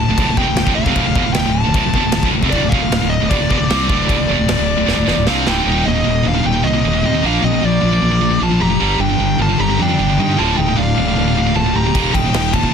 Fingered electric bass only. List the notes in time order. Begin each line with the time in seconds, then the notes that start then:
0.09 D1
0.18 D1
0.29 D1
0.37 E1
0.49 D1
0.58 D1
0.67 D1
0.77 D1
0.86 F1
0.96 D1
1.07 D1
1.16 E1
1.27 D1
1.36 D1
1.48 D1
1.68 D1
1.75 D1
1.87 D1
1.94 E1
2.05 D1
2.15 D1
2.23 D1
2.34 D1
2.43 F1
2.53 D1
2.62 D1
2.73 E1
2.81 D1
2.91 D1
3.02 D1
3.22 D1
3.31 D1
3.41 D1
3.51 E1
3.62 D1
3.71 C2
3.90 D1
4.09 D1
4.21 D1
4.30 E1
4.39 D1
4.49 D1
4.59 D1
4.79 D1
4.88 D1
4.97 D1
5.08 E1
5.17 D1
5.27 C2
5.47 D1
5.66 D#1
5.87 D#1
6.06 D#1
6.25 D#1
6.44 D#1
6.64 C2
6.84 D#1
7.03 D#2
7.23 A#1
7.43 A#1
7.63 A#1
7.83 A#1
8.02 A#1
8.41 A#1
8.61 F1
8.81 G1
8.99 G1
9.20 G1
9.39 G1
9.59 G1
9.79 F2
9.99 G1
10.18 G2
10.39 D1
10.58 D1
10.78 D1
10.98 D1
11.17 D1
11.55 D1
11.76 D1
11.95 D#1
12.15 D#1
12.34 D#1
12.54 D#1